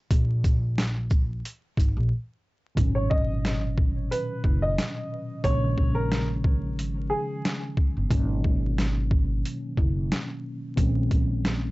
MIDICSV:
0, 0, Header, 1, 5, 480
1, 0, Start_track
1, 0, Tempo, 666667
1, 76, Time_signature, 4, 2, 24, 8
1, 8433, End_track
2, 0, Start_track
2, 0, Title_t, "Upright piano"
2, 0, Program_c, 0, 0
2, 2124, Note_on_c, 0, 73, 73
2, 2222, Note_off_c, 0, 73, 0
2, 2233, Note_on_c, 0, 75, 85
2, 2586, Note_off_c, 0, 75, 0
2, 2961, Note_on_c, 0, 71, 80
2, 3311, Note_off_c, 0, 71, 0
2, 3329, Note_on_c, 0, 75, 79
2, 3887, Note_off_c, 0, 75, 0
2, 3918, Note_on_c, 0, 73, 104
2, 4269, Note_off_c, 0, 73, 0
2, 4282, Note_on_c, 0, 70, 86
2, 4502, Note_off_c, 0, 70, 0
2, 5110, Note_on_c, 0, 68, 83
2, 5465, Note_off_c, 0, 68, 0
2, 8433, End_track
3, 0, Start_track
3, 0, Title_t, "Tine electric piano"
3, 0, Program_c, 1, 4
3, 1981, Note_on_c, 1, 47, 71
3, 1988, Note_on_c, 1, 51, 64
3, 1995, Note_on_c, 1, 54, 63
3, 2003, Note_on_c, 1, 46, 60
3, 2010, Note_on_c, 1, 61, 76
3, 2116, Control_c, 1, 64, 127
3, 3880, Note_off_c, 1, 47, 0
3, 3883, Note_off_c, 1, 51, 0
3, 3887, Note_off_c, 1, 54, 0
3, 3891, Note_off_c, 1, 46, 0
3, 3895, Note_off_c, 1, 61, 0
3, 3908, Note_on_c, 1, 49, 68
3, 3916, Note_on_c, 1, 51, 61
3, 3923, Note_on_c, 1, 53, 63
3, 3924, Control_c, 1, 64, 0
3, 3930, Note_on_c, 1, 56, 67
3, 3938, Note_on_c, 1, 61, 71
3, 4043, Control_c, 1, 64, 127
3, 5803, Note_off_c, 1, 49, 0
3, 5808, Note_off_c, 1, 51, 0
3, 5811, Note_off_c, 1, 53, 0
3, 5815, Note_off_c, 1, 56, 0
3, 5818, Note_off_c, 1, 61, 0
3, 5821, Note_on_c, 1, 47, 73
3, 5829, Note_on_c, 1, 51, 62
3, 5836, Note_on_c, 1, 54, 62
3, 5843, Note_on_c, 1, 58, 59
3, 5847, Control_c, 1, 64, 0
3, 5850, Note_on_c, 1, 61, 75
3, 5967, Control_c, 1, 64, 127
3, 7720, Note_off_c, 1, 47, 0
3, 7724, Note_off_c, 1, 51, 0
3, 7727, Note_off_c, 1, 54, 0
3, 7731, Note_off_c, 1, 58, 0
3, 7734, Note_off_c, 1, 61, 0
3, 7749, Note_on_c, 1, 60, 68
3, 7756, Note_on_c, 1, 51, 62
3, 7763, Note_on_c, 1, 53, 63
3, 7765, Control_c, 1, 64, 0
3, 7770, Note_on_c, 1, 56, 66
3, 7778, Note_on_c, 1, 61, 71
3, 7898, Control_c, 1, 64, 127
3, 8433, Note_off_c, 1, 51, 0
3, 8433, Note_off_c, 1, 53, 0
3, 8433, Note_off_c, 1, 56, 0
3, 8433, Note_off_c, 1, 60, 0
3, 8433, Note_off_c, 1, 61, 0
3, 8433, End_track
4, 0, Start_track
4, 0, Title_t, "Upright bass"
4, 0, Program_c, 2, 32
4, 79, Note_on_c, 2, 34, 103
4, 1009, Note_off_c, 2, 34, 0
4, 1280, Note_on_c, 2, 32, 91
4, 1399, Note_off_c, 2, 32, 0
4, 1416, Note_on_c, 2, 34, 96
4, 1509, Note_off_c, 2, 34, 0
4, 1998, Note_on_c, 2, 32, 99
4, 2929, Note_off_c, 2, 32, 0
4, 3200, Note_on_c, 2, 30, 99
4, 3414, Note_off_c, 2, 30, 0
4, 3920, Note_on_c, 2, 34, 101
4, 4882, Note_off_c, 2, 34, 0
4, 4882, Note_on_c, 2, 32, 94
4, 5096, Note_off_c, 2, 32, 0
4, 5737, Note_on_c, 2, 31, 88
4, 5829, Note_off_c, 2, 31, 0
4, 5839, Note_on_c, 2, 32, 108
4, 6769, Note_off_c, 2, 32, 0
4, 7041, Note_on_c, 2, 30, 96
4, 7255, Note_off_c, 2, 30, 0
4, 7759, Note_on_c, 2, 34, 103
4, 8433, Note_off_c, 2, 34, 0
4, 8433, End_track
5, 0, Start_track
5, 0, Title_t, "Drums"
5, 76, Note_on_c, 9, 36, 122
5, 78, Note_on_c, 9, 42, 98
5, 148, Note_off_c, 9, 36, 0
5, 150, Note_off_c, 9, 42, 0
5, 319, Note_on_c, 9, 36, 98
5, 319, Note_on_c, 9, 42, 53
5, 319, Note_on_c, 9, 82, 54
5, 391, Note_off_c, 9, 36, 0
5, 391, Note_off_c, 9, 42, 0
5, 391, Note_off_c, 9, 82, 0
5, 563, Note_on_c, 9, 38, 122
5, 572, Note_on_c, 9, 42, 66
5, 635, Note_off_c, 9, 38, 0
5, 644, Note_off_c, 9, 42, 0
5, 795, Note_on_c, 9, 82, 56
5, 799, Note_on_c, 9, 36, 99
5, 867, Note_off_c, 9, 82, 0
5, 871, Note_off_c, 9, 36, 0
5, 1047, Note_on_c, 9, 42, 87
5, 1119, Note_off_c, 9, 42, 0
5, 1277, Note_on_c, 9, 36, 87
5, 1293, Note_on_c, 9, 42, 48
5, 1293, Note_on_c, 9, 82, 49
5, 1349, Note_off_c, 9, 36, 0
5, 1365, Note_off_c, 9, 42, 0
5, 1365, Note_off_c, 9, 82, 0
5, 1995, Note_on_c, 9, 36, 118
5, 1997, Note_on_c, 9, 42, 92
5, 2067, Note_off_c, 9, 36, 0
5, 2069, Note_off_c, 9, 42, 0
5, 2238, Note_on_c, 9, 36, 97
5, 2310, Note_off_c, 9, 36, 0
5, 2483, Note_on_c, 9, 38, 114
5, 2492, Note_on_c, 9, 42, 64
5, 2555, Note_off_c, 9, 38, 0
5, 2564, Note_off_c, 9, 42, 0
5, 2719, Note_on_c, 9, 36, 96
5, 2791, Note_off_c, 9, 36, 0
5, 2966, Note_on_c, 9, 42, 90
5, 3038, Note_off_c, 9, 42, 0
5, 3197, Note_on_c, 9, 36, 86
5, 3269, Note_off_c, 9, 36, 0
5, 3445, Note_on_c, 9, 38, 110
5, 3445, Note_on_c, 9, 42, 79
5, 3517, Note_off_c, 9, 38, 0
5, 3517, Note_off_c, 9, 42, 0
5, 3916, Note_on_c, 9, 36, 121
5, 3919, Note_on_c, 9, 42, 94
5, 3988, Note_off_c, 9, 36, 0
5, 3991, Note_off_c, 9, 42, 0
5, 4159, Note_on_c, 9, 36, 95
5, 4231, Note_off_c, 9, 36, 0
5, 4404, Note_on_c, 9, 38, 111
5, 4413, Note_on_c, 9, 42, 63
5, 4476, Note_off_c, 9, 38, 0
5, 4485, Note_off_c, 9, 42, 0
5, 4639, Note_on_c, 9, 36, 96
5, 4711, Note_off_c, 9, 36, 0
5, 4888, Note_on_c, 9, 42, 90
5, 4960, Note_off_c, 9, 42, 0
5, 5365, Note_on_c, 9, 38, 111
5, 5365, Note_on_c, 9, 42, 78
5, 5437, Note_off_c, 9, 38, 0
5, 5437, Note_off_c, 9, 42, 0
5, 5596, Note_on_c, 9, 36, 89
5, 5668, Note_off_c, 9, 36, 0
5, 5836, Note_on_c, 9, 36, 115
5, 5839, Note_on_c, 9, 42, 91
5, 5908, Note_off_c, 9, 36, 0
5, 5911, Note_off_c, 9, 42, 0
5, 6079, Note_on_c, 9, 36, 94
5, 6151, Note_off_c, 9, 36, 0
5, 6324, Note_on_c, 9, 38, 114
5, 6334, Note_on_c, 9, 42, 63
5, 6396, Note_off_c, 9, 38, 0
5, 6406, Note_off_c, 9, 42, 0
5, 6559, Note_on_c, 9, 36, 97
5, 6631, Note_off_c, 9, 36, 0
5, 6807, Note_on_c, 9, 42, 85
5, 6879, Note_off_c, 9, 42, 0
5, 7037, Note_on_c, 9, 36, 82
5, 7109, Note_off_c, 9, 36, 0
5, 7285, Note_on_c, 9, 38, 116
5, 7286, Note_on_c, 9, 42, 79
5, 7357, Note_off_c, 9, 38, 0
5, 7358, Note_off_c, 9, 42, 0
5, 7757, Note_on_c, 9, 36, 118
5, 7759, Note_on_c, 9, 42, 91
5, 7829, Note_off_c, 9, 36, 0
5, 7831, Note_off_c, 9, 42, 0
5, 7999, Note_on_c, 9, 36, 97
5, 7999, Note_on_c, 9, 42, 53
5, 8071, Note_off_c, 9, 36, 0
5, 8071, Note_off_c, 9, 42, 0
5, 8243, Note_on_c, 9, 38, 115
5, 8253, Note_on_c, 9, 42, 63
5, 8315, Note_off_c, 9, 38, 0
5, 8325, Note_off_c, 9, 42, 0
5, 8433, End_track
0, 0, End_of_file